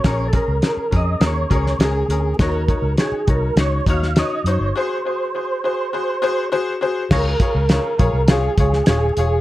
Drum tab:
CC |----------------|----------------|----------------|x---------------|
HH |x-x-x-x-x-x-x-x-|x-x-x-x-x-x-x-x-|----------------|--x-x-x-x-x-x-x-|
SD |o---o---o--oo---|o---o---o--oo---|----------------|o---o---o--oo---|
BD |o-o---o---o-----|o-o---o---o-----|----------------|o-o---o---o-----|